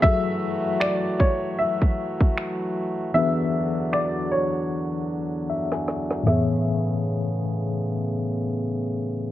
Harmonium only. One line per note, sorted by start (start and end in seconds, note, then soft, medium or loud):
0.00 3.12 E3 medium
0.00 6.22 F#3 medium
0.00 3.11 A3 medium
0.00 6.22 F#4 medium
3.15 6.23 E2 medium
3.15 6.23 D3 medium
3.15 6.23 D4 medium
6.27 9.32 C#3 medium
6.27 9.32 A3 medium
6.27 9.32 B3 medium
6.27 9.32 G#4 medium